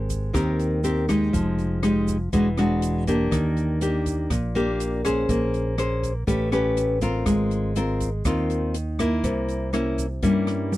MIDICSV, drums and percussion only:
0, 0, Header, 1, 2, 480
1, 0, Start_track
1, 0, Tempo, 494234
1, 1295, Time_signature, 4, 2, 24, 8
1, 10465, End_track
2, 0, Start_track
2, 0, Title_t, "Drums"
2, 95, Note_on_c, 9, 36, 24
2, 96, Note_on_c, 9, 42, 27
2, 98, Note_on_c, 9, 82, 61
2, 192, Note_off_c, 9, 36, 0
2, 194, Note_off_c, 9, 42, 0
2, 195, Note_off_c, 9, 82, 0
2, 335, Note_on_c, 9, 36, 51
2, 335, Note_on_c, 9, 37, 53
2, 335, Note_on_c, 9, 42, 37
2, 342, Note_on_c, 9, 82, 60
2, 432, Note_off_c, 9, 36, 0
2, 432, Note_off_c, 9, 37, 0
2, 432, Note_off_c, 9, 42, 0
2, 439, Note_off_c, 9, 82, 0
2, 576, Note_on_c, 9, 42, 25
2, 584, Note_on_c, 9, 82, 26
2, 673, Note_off_c, 9, 42, 0
2, 681, Note_off_c, 9, 82, 0
2, 816, Note_on_c, 9, 82, 53
2, 819, Note_on_c, 9, 42, 40
2, 913, Note_off_c, 9, 82, 0
2, 916, Note_off_c, 9, 42, 0
2, 1057, Note_on_c, 9, 37, 60
2, 1057, Note_on_c, 9, 42, 26
2, 1058, Note_on_c, 9, 36, 22
2, 1061, Note_on_c, 9, 82, 62
2, 1154, Note_off_c, 9, 37, 0
2, 1154, Note_off_c, 9, 42, 0
2, 1155, Note_off_c, 9, 36, 0
2, 1158, Note_off_c, 9, 82, 0
2, 1299, Note_on_c, 9, 36, 54
2, 1302, Note_on_c, 9, 42, 38
2, 1303, Note_on_c, 9, 82, 59
2, 1396, Note_off_c, 9, 36, 0
2, 1399, Note_off_c, 9, 42, 0
2, 1401, Note_off_c, 9, 82, 0
2, 1539, Note_on_c, 9, 42, 22
2, 1544, Note_on_c, 9, 82, 25
2, 1636, Note_off_c, 9, 42, 0
2, 1641, Note_off_c, 9, 82, 0
2, 1776, Note_on_c, 9, 37, 57
2, 1776, Note_on_c, 9, 42, 38
2, 1787, Note_on_c, 9, 82, 49
2, 1873, Note_off_c, 9, 37, 0
2, 1873, Note_off_c, 9, 42, 0
2, 1884, Note_off_c, 9, 82, 0
2, 2019, Note_on_c, 9, 82, 63
2, 2021, Note_on_c, 9, 36, 23
2, 2022, Note_on_c, 9, 42, 24
2, 2116, Note_off_c, 9, 82, 0
2, 2118, Note_off_c, 9, 36, 0
2, 2119, Note_off_c, 9, 42, 0
2, 2261, Note_on_c, 9, 36, 51
2, 2261, Note_on_c, 9, 42, 39
2, 2265, Note_on_c, 9, 82, 59
2, 2358, Note_off_c, 9, 36, 0
2, 2358, Note_off_c, 9, 42, 0
2, 2362, Note_off_c, 9, 82, 0
2, 2500, Note_on_c, 9, 37, 57
2, 2500, Note_on_c, 9, 42, 25
2, 2510, Note_on_c, 9, 82, 28
2, 2597, Note_off_c, 9, 37, 0
2, 2597, Note_off_c, 9, 42, 0
2, 2607, Note_off_c, 9, 82, 0
2, 2740, Note_on_c, 9, 42, 42
2, 2749, Note_on_c, 9, 82, 53
2, 2837, Note_off_c, 9, 42, 0
2, 2846, Note_off_c, 9, 82, 0
2, 2983, Note_on_c, 9, 36, 21
2, 2983, Note_on_c, 9, 42, 28
2, 2991, Note_on_c, 9, 82, 64
2, 3080, Note_off_c, 9, 36, 0
2, 3080, Note_off_c, 9, 42, 0
2, 3089, Note_off_c, 9, 82, 0
2, 3223, Note_on_c, 9, 36, 55
2, 3224, Note_on_c, 9, 37, 54
2, 3224, Note_on_c, 9, 42, 44
2, 3232, Note_on_c, 9, 82, 61
2, 3320, Note_off_c, 9, 36, 0
2, 3321, Note_off_c, 9, 37, 0
2, 3321, Note_off_c, 9, 42, 0
2, 3329, Note_off_c, 9, 82, 0
2, 3463, Note_on_c, 9, 42, 28
2, 3470, Note_on_c, 9, 82, 24
2, 3560, Note_off_c, 9, 42, 0
2, 3567, Note_off_c, 9, 82, 0
2, 3701, Note_on_c, 9, 42, 44
2, 3708, Note_on_c, 9, 82, 50
2, 3798, Note_off_c, 9, 42, 0
2, 3805, Note_off_c, 9, 82, 0
2, 3941, Note_on_c, 9, 36, 23
2, 3942, Note_on_c, 9, 42, 27
2, 3950, Note_on_c, 9, 82, 60
2, 4038, Note_off_c, 9, 36, 0
2, 4039, Note_off_c, 9, 42, 0
2, 4047, Note_off_c, 9, 82, 0
2, 4178, Note_on_c, 9, 37, 51
2, 4178, Note_on_c, 9, 42, 38
2, 4181, Note_on_c, 9, 36, 52
2, 4194, Note_on_c, 9, 82, 63
2, 4276, Note_off_c, 9, 37, 0
2, 4276, Note_off_c, 9, 42, 0
2, 4278, Note_off_c, 9, 36, 0
2, 4291, Note_off_c, 9, 82, 0
2, 4419, Note_on_c, 9, 42, 24
2, 4430, Note_on_c, 9, 82, 26
2, 4516, Note_off_c, 9, 42, 0
2, 4527, Note_off_c, 9, 82, 0
2, 4662, Note_on_c, 9, 42, 39
2, 4668, Note_on_c, 9, 82, 54
2, 4759, Note_off_c, 9, 42, 0
2, 4765, Note_off_c, 9, 82, 0
2, 4899, Note_on_c, 9, 36, 24
2, 4902, Note_on_c, 9, 37, 57
2, 4902, Note_on_c, 9, 42, 26
2, 4909, Note_on_c, 9, 82, 61
2, 4996, Note_off_c, 9, 36, 0
2, 4999, Note_off_c, 9, 37, 0
2, 4999, Note_off_c, 9, 42, 0
2, 5006, Note_off_c, 9, 82, 0
2, 5136, Note_on_c, 9, 42, 37
2, 5137, Note_on_c, 9, 36, 54
2, 5146, Note_on_c, 9, 82, 61
2, 5234, Note_off_c, 9, 42, 0
2, 5235, Note_off_c, 9, 36, 0
2, 5243, Note_off_c, 9, 82, 0
2, 5378, Note_on_c, 9, 42, 24
2, 5383, Note_on_c, 9, 82, 24
2, 5476, Note_off_c, 9, 42, 0
2, 5480, Note_off_c, 9, 82, 0
2, 5615, Note_on_c, 9, 37, 57
2, 5615, Note_on_c, 9, 42, 40
2, 5622, Note_on_c, 9, 82, 50
2, 5712, Note_off_c, 9, 37, 0
2, 5712, Note_off_c, 9, 42, 0
2, 5719, Note_off_c, 9, 82, 0
2, 5856, Note_on_c, 9, 36, 23
2, 5859, Note_on_c, 9, 42, 25
2, 5867, Note_on_c, 9, 82, 65
2, 5953, Note_off_c, 9, 36, 0
2, 5956, Note_off_c, 9, 42, 0
2, 5964, Note_off_c, 9, 82, 0
2, 6095, Note_on_c, 9, 36, 54
2, 6096, Note_on_c, 9, 42, 40
2, 6105, Note_on_c, 9, 82, 62
2, 6192, Note_off_c, 9, 36, 0
2, 6193, Note_off_c, 9, 42, 0
2, 6202, Note_off_c, 9, 82, 0
2, 6334, Note_on_c, 9, 37, 56
2, 6334, Note_on_c, 9, 42, 24
2, 6339, Note_on_c, 9, 82, 27
2, 6431, Note_off_c, 9, 37, 0
2, 6431, Note_off_c, 9, 42, 0
2, 6436, Note_off_c, 9, 82, 0
2, 6574, Note_on_c, 9, 42, 40
2, 6578, Note_on_c, 9, 82, 54
2, 6671, Note_off_c, 9, 42, 0
2, 6675, Note_off_c, 9, 82, 0
2, 6810, Note_on_c, 9, 42, 27
2, 6813, Note_on_c, 9, 36, 25
2, 6814, Note_on_c, 9, 82, 62
2, 6907, Note_off_c, 9, 42, 0
2, 6910, Note_off_c, 9, 36, 0
2, 6911, Note_off_c, 9, 82, 0
2, 7050, Note_on_c, 9, 37, 56
2, 7050, Note_on_c, 9, 42, 40
2, 7053, Note_on_c, 9, 36, 55
2, 7059, Note_on_c, 9, 82, 62
2, 7147, Note_off_c, 9, 37, 0
2, 7147, Note_off_c, 9, 42, 0
2, 7150, Note_off_c, 9, 36, 0
2, 7156, Note_off_c, 9, 82, 0
2, 7294, Note_on_c, 9, 42, 27
2, 7296, Note_on_c, 9, 82, 25
2, 7391, Note_off_c, 9, 42, 0
2, 7393, Note_off_c, 9, 82, 0
2, 7534, Note_on_c, 9, 42, 43
2, 7537, Note_on_c, 9, 82, 50
2, 7631, Note_off_c, 9, 42, 0
2, 7634, Note_off_c, 9, 82, 0
2, 7772, Note_on_c, 9, 42, 27
2, 7773, Note_on_c, 9, 36, 24
2, 7781, Note_on_c, 9, 82, 62
2, 7869, Note_off_c, 9, 42, 0
2, 7870, Note_off_c, 9, 36, 0
2, 7878, Note_off_c, 9, 82, 0
2, 8013, Note_on_c, 9, 36, 54
2, 8013, Note_on_c, 9, 37, 54
2, 8013, Note_on_c, 9, 42, 41
2, 8013, Note_on_c, 9, 82, 60
2, 8110, Note_off_c, 9, 36, 0
2, 8110, Note_off_c, 9, 37, 0
2, 8110, Note_off_c, 9, 42, 0
2, 8110, Note_off_c, 9, 82, 0
2, 8253, Note_on_c, 9, 42, 27
2, 8262, Note_on_c, 9, 82, 27
2, 8350, Note_off_c, 9, 42, 0
2, 8359, Note_off_c, 9, 82, 0
2, 8490, Note_on_c, 9, 42, 42
2, 8503, Note_on_c, 9, 82, 55
2, 8587, Note_off_c, 9, 42, 0
2, 8600, Note_off_c, 9, 82, 0
2, 8732, Note_on_c, 9, 37, 58
2, 8732, Note_on_c, 9, 42, 27
2, 8733, Note_on_c, 9, 36, 25
2, 8738, Note_on_c, 9, 82, 62
2, 8829, Note_off_c, 9, 37, 0
2, 8829, Note_off_c, 9, 42, 0
2, 8830, Note_off_c, 9, 36, 0
2, 8835, Note_off_c, 9, 82, 0
2, 8971, Note_on_c, 9, 42, 41
2, 8972, Note_on_c, 9, 36, 57
2, 8978, Note_on_c, 9, 82, 62
2, 9068, Note_off_c, 9, 42, 0
2, 9070, Note_off_c, 9, 36, 0
2, 9075, Note_off_c, 9, 82, 0
2, 9211, Note_on_c, 9, 42, 26
2, 9223, Note_on_c, 9, 82, 26
2, 9308, Note_off_c, 9, 42, 0
2, 9321, Note_off_c, 9, 82, 0
2, 9453, Note_on_c, 9, 37, 58
2, 9453, Note_on_c, 9, 42, 39
2, 9550, Note_off_c, 9, 37, 0
2, 9550, Note_off_c, 9, 42, 0
2, 9693, Note_on_c, 9, 36, 23
2, 9693, Note_on_c, 9, 42, 25
2, 9700, Note_on_c, 9, 82, 64
2, 9790, Note_off_c, 9, 36, 0
2, 9790, Note_off_c, 9, 42, 0
2, 9797, Note_off_c, 9, 82, 0
2, 9930, Note_on_c, 9, 42, 36
2, 9932, Note_on_c, 9, 36, 55
2, 9945, Note_on_c, 9, 82, 60
2, 10027, Note_off_c, 9, 42, 0
2, 10029, Note_off_c, 9, 36, 0
2, 10042, Note_off_c, 9, 82, 0
2, 10168, Note_on_c, 9, 37, 57
2, 10168, Note_on_c, 9, 42, 24
2, 10189, Note_on_c, 9, 82, 26
2, 10265, Note_off_c, 9, 37, 0
2, 10265, Note_off_c, 9, 42, 0
2, 10286, Note_off_c, 9, 82, 0
2, 10413, Note_on_c, 9, 48, 37
2, 10422, Note_on_c, 9, 82, 55
2, 10465, Note_off_c, 9, 48, 0
2, 10465, Note_off_c, 9, 82, 0
2, 10465, End_track
0, 0, End_of_file